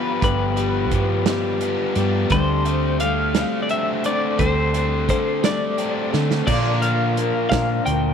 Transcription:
Already playing: steel-string acoustic guitar F3 B3 F4 G4, overdriven electric guitar F3 G3 B3, clean electric guitar B4
0.22 picked electric bass G1, overdriven electric guitar G2, steel-string acoustic guitar G2 D3 F3 B3 F4 G4, clean electric guitar B4, kick, closed hi-hat
0.57 overdriven electric guitar G3, closed hi-hat
0.91 picked electric bass G2, overdriven electric guitar F3, steel-string acoustic guitar F3 B3 F4 G4, kick, closed hi-hat
1.26 steel-string acoustic guitar G2 D3 F3 B3 F4 G4, overdriven electric guitar G3, snare, closed hi-hat
1.61 overdriven electric guitar B3, closed hi-hat
1.95 picked electric bass G2, steel-string acoustic guitar F3 B3 F4 G4, overdriven electric guitar G3, closed hi-hat
2.30 picked electric bass D2, overdriven electric guitar D3, steel-string acoustic guitar D3 G3 C4 D4 A4, clean electric guitar C5, kick, closed hi-hat
2.65 overdriven electric guitar A3, closed hi-hat
3.00 overdriven electric guitar D3, steel-string acoustic guitar G3 C4 D4 A4, clean electric guitar F5, closed hi-hat
3.35 steel-string acoustic guitar D3 G3 C4 D4 A4, overdriven electric guitar A3, snare, closed hi-hat
3.62 clean electric guitar D5
3.69 overdriven electric guitar C4, clean electric guitar E5, closed hi-hat
4.04 overdriven electric guitar A3, steel-string acoustic guitar C4 D4 A4, clean electric guitar D5, closed hi-hat
4.38 picked electric bass D2, steel-string acoustic guitar D3 G3 C4 D4 A4, overdriven electric guitar D3, clean electric guitar C5, kick, closed hi-hat
4.74 overdriven electric guitar A3, closed hi-hat
5.08 overdriven electric guitar D3, picked electric bass D3, steel-string acoustic guitar G3 C4 D4 A4, clean electric guitar C5, kick, closed hi-hat
5.43 steel-string acoustic guitar D3 G3 C4 D4 A4, overdriven electric guitar A3, clean electric guitar D5, snare, closed hi-hat
5.78 overdriven electric guitar C4, closed hi-hat
6.12 picked electric bass D3, overdriven electric guitar A3, steel-string acoustic guitar C4 D4 A4, snare
6.31 snare
6.46 overdriven electric guitar A#2 F3 A#3 D4 F4, steel-string acoustic guitar A#2 D3 F3 A#3 D4 A#4, picked electric bass A#2, tonewheel organ D4 F4 A#4, clean electric guitar D5, kick, crash
6.82 clean electric guitar F5, closed hi-hat
7.17 steel-string acoustic guitar F3 A#3 D4 A#4, closed hi-hat
7.50 picked electric bass A#2, steel-string acoustic guitar A#2 D3 F3 A#3 D4 A#4, clean electric guitar F5, kick, snare, closed hi-hat
7.86 picked electric bass D2, clean electric guitar G5, closed hi-hat

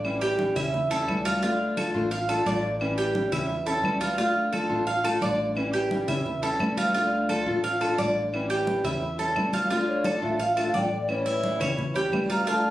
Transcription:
Already playing: upright bass A1
0.04 nylon-string guitar E3 G3 C#4 E4, high conga, claves
0.21 cuban tres G4, high conga
0.38 nylon-string guitar E3 G3 C#4 E4, high conga
0.55 upright bass E2, nylon-string guitar G3 C#4 E4, cuban tres E5, high conga, low conga, claves
0.74 muted nylon-string guitar stroke, high conga, low conga
0.90 nylon-string guitar G3 C#4 E4, cuban tres A4, high conga
1.07 upright bass D2, nylon-string guitar E3 G3 C#4 E4, high conga, claves
1.25 cuban tres F4, high conga
1.42 nylon-string guitar D3 A3 D4 F4, cuban tres F4, high conga
1.60 high conga
1.77 nylon-string guitar D3 A3 D4 F4, cuban tres A4, high conga, claves
1.94 upright bass A1, nylon-string guitar A3 D4 F4, high conga
2.11 cuban tres F5, muted nylon-string guitar stroke, high conga
2.29 nylon-string guitar A3 D4 F4, cuban tres A4, high conga, claves
2.45 upright bass A1, nylon-string guitar D3 A3 D4 F4, cuban tres D5, high conga
2.63 high conga
2.80 nylon-string guitar E3 G3 C#4 E4, high conga, claves
2.98 cuban tres G4, high conga
3.14 nylon-string guitar E3 G3 C#4 E4, high conga
3.32 upright bass E2, nylon-string guitar G3 C#4 E4, cuban tres E5, high conga, low conga, claves
3.49 muted nylon-string guitar stroke, high conga
3.66 nylon-string guitar G3 C#4 E4, cuban tres A4, high conga
3.83 upright bass D2, nylon-string guitar E3 G3 C#4 E4, high conga, claves
4.01 cuban tres F4, high conga
4.18 nylon-string guitar D3 A3 D4 F4, cuban tres F4, high conga
4.36 high conga
4.52 nylon-string guitar D3 A3 D4 F4, cuban tres A4, high conga, claves
4.69 upright bass A1, nylon-string guitar A3 D4 F4, high conga
4.87 cuban tres F5, muted nylon-string guitar stroke, high conga
5.04 nylon-string guitar A3 D4 F4, cuban tres A4, high conga, claves
5.21 upright bass A1, nylon-string guitar D3 A3 D4 F4, cuban tres D5, high conga
5.39 high conga
5.55 nylon-string guitar E3 G3 C#4 E4, high conga, claves
5.74 cuban tres G4, high conga
5.90 nylon-string guitar E3 G3 C#4 E4, high conga
6.08 upright bass E2, nylon-string guitar G3 C#4 E4, cuban tres E5, high conga, low conga, claves
6.25 muted nylon-string guitar stroke, high conga, low conga
6.42 nylon-string guitar G3 C#4 E4, cuban tres A4, high conga
6.59 upright bass D2, nylon-string guitar E3 G3 C#4 E4, high conga, claves
6.77 cuban tres F4, high conga
6.94 nylon-string guitar D3 A3 D4 F4, cuban tres F4
7.12 high conga
7.29 nylon-string guitar D3 A3 D4 F4, cuban tres A4, high conga, claves
7.46 upright bass A1, nylon-string guitar A3 D4 F4, high conga
7.64 cuban tres F5, muted nylon-string guitar stroke, high conga
7.81 nylon-string guitar A3 D4 F4, cuban tres A4, high conga, claves
7.98 upright bass A1, nylon-string guitar D3 A3 D4 F4, cuban tres D5, high conga
8.16 high conga
8.33 nylon-string guitar E3 G3 C#4 E4, high conga, claves
8.50 cuban tres G4, high conga
8.67 nylon-string guitar E3 G3 C#4 E4, high conga
8.84 upright bass E2, nylon-string guitar G3 C#4 E4, cuban tres E5, high conga, low conga, claves
9.01 muted nylon-string guitar stroke, high conga
9.18 nylon-string guitar G3 C#4 E4, cuban tres A4, high conga
9.35 upright bass D2, nylon-string guitar E3 G3 C#4 E4, high conga, claves
9.53 cuban tres F4, high conga
9.70 nylon-string guitar D3 A3 D4 F4, cuban tres F4, high conga
9.87 bansuri C#5, high conga
10.04 nylon-string guitar D3 A3 D4 F4, cuban tres A4, bansuri D5, high conga, claves
10.22 upright bass A1, nylon-string guitar A3 D4 F4, bansuri E5, high conga
10.39 cuban tres F5, bansuri F5, muted nylon-string guitar stroke, high conga
10.53 nylon-string guitar D4 F4, cuban tres A4, bansuri E5, high conga
10.58 nylon-string guitar A3, claves
10.65 bansuri F5
10.74 upright bass A1, nylon-string guitar D3 A3 D4 F4, cuban tres D5, bansuri G5, high conga
10.91 bansuri D5, high conga
11.08 nylon-string guitar E3 G3 C#4 E4, bansuri C#5, high conga, claves
11.26 cuban tres E4, high conga
11.43 nylon-string guitar E3 G3 C#4 E4, high conga
11.60 upright bass E2, nylon-string guitar G3 C#4 E4, cuban tres C#5, high conga, low conga, claves
11.77 muted nylon-string guitar stroke, high conga, low conga
11.94 nylon-string guitar G3 C#4 E4, cuban tres G4, high conga
12.12 upright bass D2, nylon-string guitar E3 G3 C#4 E4, high conga, claves
12.30 cuban tres F4, bansuri A#5, high conga
12.46 nylon-string guitar D3 A3 D4 F4, cuban tres F4, bansuri A5, high conga
12.65 high conga

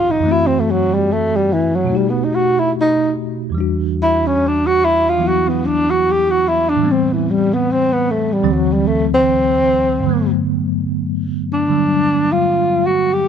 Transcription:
Already playing: tine electric piano C2 G2 A2 A#2 D#3 F3 C4 D4 D#4 F4 G4, tenor saxophone F4
0.11 tenor saxophone D#4
0.20 tine electric piano F#2 E3
0.26 tine electric piano A3 C4
0.31 tenor saxophone E4, tine electric piano F#4
0.47 tenor saxophone C4
0.60 tenor saxophone A3
0.71 tenor saxophone F#3
0.94 tenor saxophone G3
1.13 tenor saxophone A3
1.36 tenor saxophone G3
1.53 tenor saxophone E3
1.75 tenor saxophone F#3
1.84 tine electric piano B2 F#4
1.90 tine electric piano A3 D#4
1.95 tenor saxophone G3, tine electric piano G4
2.10 tenor saxophone B3
2.24 tenor saxophone D#4
2.35 tenor saxophone F#4
2.59 tenor saxophone E4
2.81 tenor saxophone D#4
3.50 tine electric piano E2 E3
3.55 tine electric piano G3 D4
3.61 tine electric piano F#4
4.02 tenor saxophone E4
4.27 tenor saxophone C#4
4.47 tenor saxophone D4
4.67 tenor saxophone F#4
4.84 tenor saxophone E4
5.09 tenor saxophone F4
5.19 tine electric piano E3 F#3 B3 E4
5.28 tenor saxophone F#4
5.49 tenor saxophone B3
5.66 tenor saxophone D4
5.90 tenor saxophone F#4
6.11 tenor saxophone G4
6.30 tenor saxophone F#4
6.48 tenor saxophone E4
6.69 tenor saxophone D4
6.76 tine electric piano A2 E3
6.82 tine electric piano G3 B3
6.87 tine electric piano C4
6.91 tenor saxophone C4
7.13 tenor saxophone E3
7.31 tenor saxophone G3
7.54 tenor saxophone B3
7.72 tenor saxophone C4
7.93 tenor saxophone B3
8.11 tenor saxophone A3
8.33 tenor saxophone G3
8.43 tine electric piano D2 D3 E3 F#3 C4
8.53 tenor saxophone F#3
8.73 tenor saxophone G3
8.87 tenor saxophone A3
9.14 tenor saxophone C4
10.00 tine electric piano G2 D3
10.06 tine electric piano F#3 A3
10.11 tine electric piano B3
11.53 tenor saxophone D4
11.69 tine electric piano D3 F#3 G3
12.32 tenor saxophone F4
12.87 tenor saxophone F#4
13.13 tenor saxophone G4

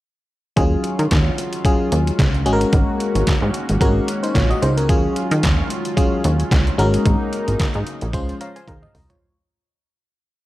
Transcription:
0.56 analog synth bass D#2, analog synth pad D#3 F#3 G#3 C#4 F4, fm electric piano F#3 C#4 F4 G#4, kick, closed hi-hat
0.84 closed hi-hat
0.99 analog synth bass D#3, closed hi-hat
1.11 analog synth bass D#2, kick, snare, clap, closed hi-hat
1.38 closed hi-hat
1.53 closed hi-hat
1.65 fm electric piano F#3 C#4 F4 G#4, kick, closed hi-hat
1.92 analog synth bass D#2, closed hi-hat
2.07 closed hi-hat
2.19 analog synth bass C#2, kick, snare, clap, closed hi-hat
2.34 closed hi-hat
2.46 analog synth bass G#1, fm electric piano G#3 C#4 F#4 G#4, analog synth pad A#3 F#4, closed hi-hat
2.53 fm electric piano A#4
2.61 closed hi-hat
2.73 analog synth bass G#1, kick, closed hi-hat
3.00 closed hi-hat
3.15 analog synth bass G#1, closed hi-hat
3.27 analog synth bass G#2, kick, snare, clap, closed hi-hat
3.42 analog synth bass G#2
3.54 closed hi-hat
3.69 analog synth bass G#1, closed hi-hat
3.80 analog synth bass G#1, fm electric piano G#3 C#4 F#4 A#4, kick, closed hi-hat
4.08 closed hi-hat
4.23 fm electric piano D#4 C5, closed hi-hat
4.35 analog synth bass A#1, fm electric piano F4 C#5, kick, snare, clap, closed hi-hat
4.50 fm electric piano F#4 D#5, closed hi-hat
4.62 analog synth bass C#2, fm electric piano D#4 C5, closed hi-hat
4.77 fm electric piano C#4 A#4, closed hi-hat
4.89 analog synth bass D#2, fm electric piano F#3 C#4 F4 G#4, analog synth pad F#3 F4, kick, closed hi-hat
5.16 closed hi-hat
5.31 analog synth bass D#3, closed hi-hat
5.43 analog synth bass D#2, kick, snare, clap, closed hi-hat
5.70 closed hi-hat
5.85 closed hi-hat
5.97 fm electric piano F#3 C#4 F4 G#4, kick, closed hi-hat
6.24 analog synth bass D#2, closed hi-hat
6.40 closed hi-hat
6.51 analog synth bass C#2, kick, snare, clap, closed hi-hat
6.67 closed hi-hat
6.78 analog synth bass G#1, analog synth pad C#3 G#3 A#3 D#4, fm electric piano G#3 C#4 F#4 A#4, closed hi-hat
6.94 closed hi-hat
7.06 analog synth bass G#1, kick, closed hi-hat
7.33 closed hi-hat
7.48 analog synth bass G#1, closed hi-hat
7.60 kick, snare, clap, closed hi-hat
7.74 analog synth bass G#2, closed hi-hat
7.87 closed hi-hat
8.01 analog synth bass A#1, closed hi-hat
8.13 analog synth bass C#2, analog synth pad F3 F4 C5, fm electric piano G#3 C#4 F4 C5, kick, closed hi-hat
8.29 closed hi-hat
8.41 fm electric piano C#5 F5 A#5, closed hi-hat
8.56 fm electric piano C5 G#5, closed hi-hat
8.68 analog synth bass D#2, fm electric piano G#4 F5 A#5, kick, closed hi-hat, high tom
8.82 fm electric piano D#5, mid tom
8.95 analog synth bass C2, mid tom, open hi-hat
9.09 fm electric piano F4 C#5, closed hi-hat, floor tom

